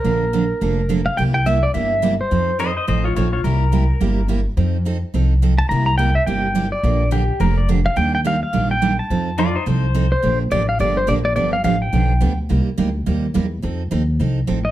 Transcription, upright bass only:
X:1
M:4/4
L:1/8
Q:"Swing" 1/4=212
K:Bb
V:1 name="Upright bass" clef=bass
B,,,4 F,,,4 | C,,4 G,,,4 | F,,4 A,,,2 B,,,2 | C,,4 G,,,4 |
F,,4 C,,4 | C,,4 G,,,4 | B,,,4 F,,,4 | E,,4 B,,,4 |
F,,4 C,,4 | B,,,2 A,,,2 G,,,2 B,,,2 | G,,,2 A,,,2 =B,,,2 D,,2 | C,, z D,,2 E,,2 =E,,2 |
F,,2 E,,2 C,,2 A,,,2 |]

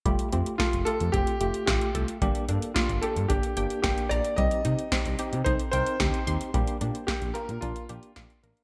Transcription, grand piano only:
X:1
M:4/4
L:1/16
Q:1/4=111
K:Fmix
V:1 name="Grand piano"
z4 F2 A2 G4 G3 z | z4 F2 A2 G4 G2 d2 | e8 c2 c4 z2 | z4 G2 B2 F6 z2 |]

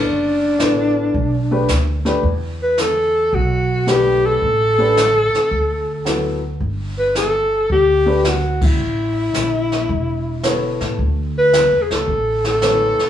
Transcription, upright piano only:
X:1
M:4/4
L:1/8
Q:"Swing" 1/4=110
K:D
V:1 name="Upright piano"
z2 [B,EAd]2 z [A,DGB] z [A,DGB] | z6 [A,DGB]2 | z [A,DGB] z4 [F,B,EA] z | z4 z [A,DGB] z2 |
z6 [B,EAc]2 | z6 [B,EAc]2 |]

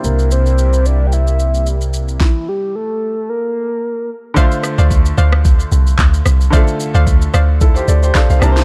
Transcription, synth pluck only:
X:1
M:4/4
L:1/16
Q:"Swing 16ths" 1/4=111
K:Dm
V:1 name="Synth pluck"
z16 | z16 | [cdf] z2 [cdf]3 [cdf]2 z8 | [cdf] z2 [cdf]3 [cdf]2 z8 |]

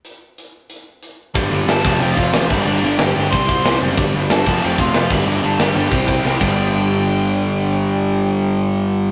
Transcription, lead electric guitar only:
X:1
M:4/4
L:1/8
Q:1/4=184
K:Flyd
V:1 name="Lead electric guitar"
z8 | z2 [Aa]2 [Gg] [Ff]2 [Ee] | [Dd] [Dd] [Gg] [Gg] [cc']3 z | z2 [Aa]2 [Gg] [Ff]2 [Ee] |
[Dd] [Aa] [Gg] [Gg]4 g- | g8- | g8 |]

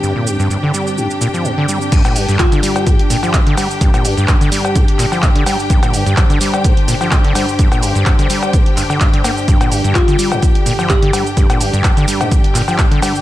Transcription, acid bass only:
X:1
M:4/4
L:1/16
Q:"Swing 16ths" 1/4=127
K:Cdor
V:1 name="Acid bass" clef=bass
G,, B,, G,, G,, G,, D, G,2 G,, z B,, F, G,, D, G, z | G,, B,, G,, G,, z D, G,2 G,, z B,, F, G,, D, G, z | G,, B,, G,, G,, G,, D, G,2 G,, z B,, F, G,, D, G, z | G,, B,, G,, G,, G,, D, G,2 G,, z B,, F, G,, D, G, z |
G,, B,, G,, G,, z D, G,2 G,, z G,, D, G,, D, B, z | G,, B,, G,, G,, z D, G, G,, z2 B,, F, G,, D, G, z | G,, B,, G,, G,, z D, G, G,, z2 B,, F, G,, D, G, z |]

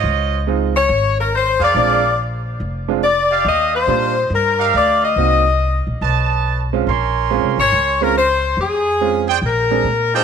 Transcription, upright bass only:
X:1
M:4/4
L:1/8
Q:"Swing" 1/4=140
K:Bbm
V:1 name="Upright bass" clef=bass
D,,4 A,,,3 F,, | B,,,4 F,,,4 | E,,2 B,,2 =G,,2 =D,,2 | C,,3 B,,, =B,,,4 |
B,,,2- (3B,,, C,, A,,, D,,4 | F,,4 B,,,2 B,,2 |]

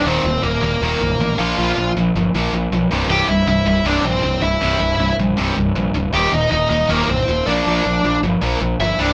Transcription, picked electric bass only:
X:1
M:4/4
L:1/8
Q:1/4=158
K:Bblyd
V:1 name="Picked electric bass" clef=bass
_E,,, E,,, E,,, E,,, E,,, C,,, A,,, B,,, | B,,, B,,, B,,, G,,, B,,, B,,, =B,,, C,,, | C,,, C,,, C,,, C,,, C,,, B,,, C,,, C,,, | C,,, C,,, C,,, B,,, C,,, C,,, B,,, D,,, |
_E,,, E,,, E,,, E,,, E,,, C,,, E,,, B,,, | B,,, B,,, B,,, G,,, B,,, B,,, G,,, C,,, |]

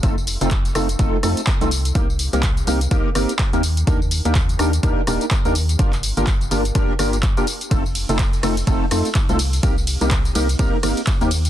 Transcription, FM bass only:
X:1
M:4/4
L:1/16
Q:"Swing 16ths" 1/4=125
K:Cdor
V:1 name="FM bass" clef=bass
F,,,3 F,,,3 F,,,2 F,,, z F,, z2 C,,3 | C,,3 C,,3 C,,2 C,, z G,,, z2 E,,3 | E,,3 E,,3 E,,2 E,, z E,,, z2 E,,3 | G,,,3 G,,,3 G,,,2 G,,, z G,,,3 F,,, z2 |
F,,,3 F,,,3 F,,,2 F,,, z F,, z2 C,,3 | C,,3 C,,3 C,,2 C,, z G,,, z2 E,,3 |]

